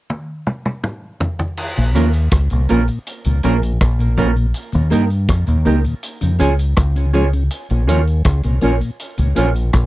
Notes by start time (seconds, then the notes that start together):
0.10 high tom
0.47 mid tom
0.66 mid tom
0.84 mid tom
1.20 floor tom
1.39 floor tom
1.57 crash
1.76 A#1 A#2, closed hi-hat
1.95 D#2 F3 A#3 C#4 F4 A#4, closed hi-hat
2.13 closed hi-hat
2.31 C#2, kick, cross-stick, closed hi-hat
2.50 C2 A#2, closed hi-hat
2.69 A#1 F3 A#3 C#4 F4 A#4, closed hi-hat
2.88 A#2, closed hi-hat
3.07 closed hi-hat
3.24 C#2 A#2, closed hi-hat
3.43 A#1 F3 A#3 C#4 F4 A#4, closed hi-hat
3.62 A#2, closed hi-hat
3.81 A#1, kick, cross-stick, closed hi-hat
3.99 A#2, closed hi-hat
4.17 F3 A#3 C#4 F4 A#4, kick, closed hi-hat
4.36 A#2, closed hi-hat
4.54 closed hi-hat
4.72 D#2 A#2, closed hi-hat
4.90 G2 G3 A#3 D#4 G4 A#4, closed hi-hat
5.10 closed hi-hat
5.29 F2, kick, cross-stick, closed hi-hat
5.47 D#2 A#2, closed hi-hat
5.65 C#2 G3 A#3 D#4 G4 A#4, closed hi-hat
5.84 D#2 A#2, closed hi-hat
6.03 closed hi-hat
6.21 F2 C#3, closed hi-hat
6.39 C#2 F3 G#3 C#4 F4 G#4 C#5, closed hi-hat
6.59 closed hi-hat
6.77 C#2, kick, cross-stick, closed hi-hat
6.96 C#3, closed hi-hat
7.13 F3 G#3 C#4 F4 G#4 C#5, closed hi-hat
7.33 C#3, closed hi-hat
7.51 closed hi-hat
7.70 A#1 A#2, closed hi-hat
7.87 D#2 F3 A#3 C#4 F4 A#4 C#5, closed hi-hat
8.07 closed hi-hat
8.25 C#2, kick, cross-stick, closed hi-hat
8.43 C2 A#2, closed hi-hat
8.61 A#1 F3 A#3 C#4 F4 A#4 C#5, closed hi-hat
8.80 A#2, closed hi-hat
9.00 closed hi-hat
9.18 C#2 A#2, closed hi-hat
9.35 A#1 F3 A#3 C#4 F4 A#4 C#5, closed hi-hat
9.55 A#2, closed hi-hat
9.73 A#1, kick, cross-stick, closed hi-hat